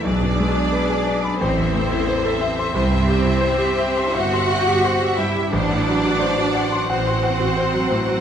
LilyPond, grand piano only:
\new Staff \with { instrumentName = "Grand piano" } { \time 4/4 \key a \dorian \tempo 4 = 89 b,,16 b,16 gis16 d'16 b'16 gis'16 d''16 b''16 a,,16 e,16 a16 e'16 c''16 a'16 e''16 c'''16 | \key c \lydian c,16 g,16 g16 e'16 c''16 g'16 e''16 c'''16 e''16 c'''16 e''16 g'16 c''16 g16 g,16 g16 | a,,16 a,16 fis16 fis'16 c''16 fis'16 fis''16 c'''16 fis''16 c'''16 fis''16 fis'16 c''16 fis16 a,16 fis16 | }